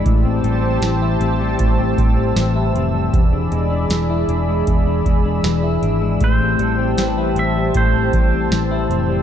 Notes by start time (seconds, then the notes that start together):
Already playing: E3 G#3 D4 E4
0.05 A1 A2 G4 C5 A5 E6, kick, closed hi-hat
0.25 C4
0.44 A1 G3, closed hi-hat
0.64 C4
0.82 A1 E3, snare, closed hi-hat
1.02 E4
1.20 A1 C4, closed hi-hat
1.41 G3
1.59 A1 A2, kick, closed hi-hat
1.79 C4
1.98 A1 G3, kick, closed hi-hat
2.17 C4
2.36 A1 E3, snare, closed hi-hat
2.56 E4
2.75 F1 C4, closed hi-hat
2.94 G3
3.13 E1 E2 G#4 D5 B5, kick, closed hi-hat
3.33 D4
3.52 E1 G#3, closed hi-hat
3.71 D4
3.90 E1 E3, snare, closed hi-hat
4.10 E4
4.28 E1 D4, closed hi-hat
4.49 G#3
4.67 E1 E2, kick, closed hi-hat
4.87 D4
5.05 E1 G#3, kick, closed hi-hat
5.25 D4
5.43 E1 E3, snare, closed hi-hat
5.63 E4
5.82 G#1 D4, closed hi-hat
6.02 G#3
6.21 A1 A2 G4 C5 A5, kick, closed hi-hat
6.40 C4
6.59 A1 G3, closed hi-hat
6.79 C4
6.98 A1 E3 G5, snare, closed hi-hat
7.02 B4
7.18 E4
7.36 A1 C4 E5, closed hi-hat
7.56 G3
7.74 A1 A2 C5, kick, closed hi-hat
7.94 C4
8.13 A1 G3, kick, closed hi-hat
8.33 C4
8.51 A1 E3, snare, closed hi-hat
8.71 E4
8.90 F1 C4, closed hi-hat
9.10 G3